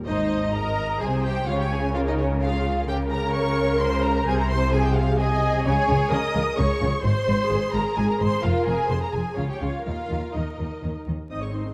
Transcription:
0.07 0.97 G#1 medium
0.07 0.97 G#2 medium
0.07 0.51 D#4 loud
0.07 0.51 C5 medium
0.07 0.51 D#5 loud
0.54 1.00 A#4 loud
0.54 1.01 D#5 medium
0.54 1.01 A#5 loud
1.01 1.47 C2 medium
1.01 1.47 C3 medium
1.01 1.24 G#4 medium
1.01 1.48 C5 loud
1.01 1.24 G#5 loud
1.24 1.48 G4 loud
1.24 1.47 G5 loud
1.48 2.85 C#2 medium
1.48 2.85 C#3 medium
1.48 1.59 F4 loud
1.48 1.94 C#5 loud
1.48 1.59 F5 loud
1.59 1.64 G4 medium
1.59 1.71 G5 loud
1.71 1.80 G#4 loud
1.71 1.95 G#5 loud
1.94 2.00 F4 loud
1.94 2.41 A#4 medium
1.94 1.99 F5 loud
2.06 2.18 D#4 medium
2.06 2.12 D#5 medium
2.18 2.41 C#4 medium
2.18 2.26 C#5 loud
2.42 2.88 F4 medium
2.42 2.88 G#4 medium
2.42 2.87 F5 loud
2.88 4.24 C#2 medium
2.88 4.24 C#3 medium
2.88 2.96 G4 loud
2.88 4.27 A#4 loud
2.88 2.96 G5 loud
3.11 3.35 A#4 loud
3.11 3.34 A#5 loud
3.34 3.81 C#5 loud
3.34 3.80 C#6 loud
3.80 4.05 C5 loud
3.80 4.04 C6 loud
4.04 4.28 A#4 loud
4.04 4.27 A#5 loud
4.27 5.62 C2 loud
4.27 5.62 C3 loud
4.27 4.39 G#4 loud
4.27 4.72 C5 loud
4.27 4.38 G#5 loud
4.40 4.50 A#4 loud
4.40 4.50 A#5 loud
4.50 4.73 C5 loud
4.50 4.72 C6 loud
4.73 5.19 G#4 medium
4.73 4.85 G#4 loud
4.73 4.84 G#5 loud
4.85 4.96 G4 loud
4.85 4.96 G5 loud
4.96 5.05 F4 loud
4.96 5.19 F5 loud
5.19 5.65 G#4 loud
5.19 5.64 D#5 loud
5.19 5.64 G#5 loud
5.65 5.73 C#2 loud
5.65 5.73 C#3 loud
5.65 6.11 G#4 loud
5.65 6.11 C#5 loud
5.65 6.11 G#5 loud
5.88 5.97 C#2 loud
5.88 5.96 C#3 medium
6.11 6.20 C#2 medium
6.11 6.19 C#3 medium
6.11 6.58 A#4 loud
6.11 6.58 D#5 loud
6.11 6.58 D#6 loud
6.34 6.43 C#2 medium
6.34 6.42 C#3 medium
6.57 6.66 C#2 loud
6.57 6.65 C#3 loud
6.57 7.04 G#4 medium
6.57 7.04 C#5 loud
6.57 7.04 C#6 loud
6.80 6.89 C#2 medium
6.80 6.88 C#3 medium
7.03 7.12 G#1 loud
7.03 7.11 G#2 medium
7.03 7.49 C5 loud
7.03 7.72 C5 loud
7.03 7.72 C6 loud
7.27 7.35 G#1 medium
7.27 7.35 G#2 medium
7.50 7.58 G#1 medium
7.50 7.58 G#2 medium
7.50 8.44 G#4 medium
7.73 7.82 G#1 medium
7.73 7.81 G#2 medium
7.73 7.97 A#4 medium
7.73 7.97 A#5 loud
7.97 8.06 G#1 medium
7.97 8.05 G#2 medium
7.97 8.09 G#4 loud
7.97 8.09 G#5 loud
8.08 8.20 A#4 medium
8.08 8.21 A#5 medium
8.19 8.29 G#1 medium
8.19 8.28 G#2 medium
8.19 8.43 C5 loud
8.19 8.44 C6 loud
8.43 8.52 F1 medium
8.43 8.51 F2 medium
8.43 8.67 F4 loud
8.43 8.89 A#4 loud
8.43 8.67 F5 loud
8.67 8.76 F1 medium
8.67 8.75 F2 medium
8.67 8.90 G#4 loud
8.67 8.90 G#5 loud
8.89 8.99 F1 medium
8.89 8.98 F2 medium
8.89 9.37 G#4 medium
8.89 9.02 C5 medium
8.89 9.02 C6 loud
9.02 9.07 A#4 medium
9.02 9.14 A#5 loud
9.13 9.22 F1 medium
9.13 9.22 F2 medium
9.13 9.36 G#4 medium
9.13 9.37 G#5 medium
9.37 9.46 C#2 medium
9.37 9.46 C#3 medium
9.37 9.49 F4 medium
9.37 9.86 C#5 medium
9.37 9.49 F5 loud
9.49 9.61 G4 medium
9.49 9.62 G5 medium
9.61 9.69 C#2 medium
9.61 9.70 C#3 medium
9.61 9.84 F4 medium
9.61 9.84 F5 medium
9.85 9.94 D#2 medium
9.85 9.94 D#3 medium
9.85 10.33 F4 medium
9.85 11.07 A#4 medium
9.85 10.33 F5 medium
10.10 10.19 D#2 medium
10.10 10.18 D#3 medium
10.34 10.43 D#2 medium
10.34 10.42 D#3 medium
10.34 11.07 D#4 medium
10.34 11.07 D#5 medium
10.58 10.67 D#2 medium
10.58 10.66 D#3 medium
10.82 10.91 D#2 medium
10.82 10.90 D#3 medium
11.07 11.15 D#2 medium
11.07 11.15 D#3 medium
11.30 11.73 G#1 medium
11.30 11.41 C4 soft
11.30 11.42 D#4 soft
11.30 11.74 D#4 soft
11.30 11.42 D#5 medium
11.30 11.42 D#6 medium
11.42 11.54 G#3 soft
11.42 11.53 C4 soft
11.42 11.55 C#5 soft
11.42 11.55 C#6 medium
11.53 11.65 C4 soft
11.53 11.66 D#4 soft
11.53 11.63 C5 medium
11.53 11.74 C6 medium
11.66 11.74 G#3 soft
11.66 11.74 C4 soft

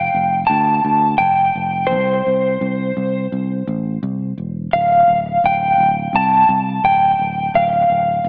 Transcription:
0.00 0.51 G5 medium
0.14 0.44 F1 medium
0.47 0.79 D2 medium
0.47 1.18 A5 medium
0.85 1.14 D2 medium
1.18 1.50 F1 medium
1.18 1.92 G5 medium
1.55 1.93 F1 medium
1.87 3.26 C5 medium
1.91 2.20 C2 medium
2.27 2.56 C2 medium
2.61 2.91 C2 medium
2.97 3.26 C2 medium
3.32 3.61 C2 medium
3.68 3.97 A1 medium
4.03 4.32 C2 medium
4.38 4.67 E1 medium
4.73 5.02 D1 medium
4.73 5.45 F5 medium
5.08 5.37 D1 medium
5.44 5.73 D1 medium
5.44 6.11 G5 medium
5.78 6.08 D1 medium
6.13 6.43 C2 medium
6.13 6.84 A5 loud
6.49 6.78 C2 medium
6.84 7.14 D1 medium
6.84 7.55 G5 medium
7.19 7.49 D1 medium
7.54 7.84 D1 medium
7.54 8.29 F5 medium
7.90 8.19 D1 medium
8.24 8.29 D1 medium

